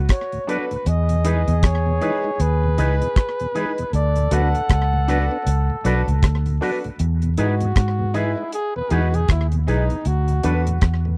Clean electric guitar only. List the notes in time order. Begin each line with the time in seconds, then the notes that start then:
0.48 D4 F#4 B4
1.24 D#4 G#4 B4
2.02 D#4 G#4 B4
2.78 D#4 G#4 B4
3.55 D#4 G#4 B4
4.31 D4 F#4 B4
5.08 D4 F#4 B4
5.85 D4 F#4 B4
6.61 D4 F#4 B4
7.38 D#4 G#4 B4
8.14 D#4 G#4 B4
8.91 D#4 G#4 B4
9.68 D#4 G#4 B4
10.44 D4 F#4 B4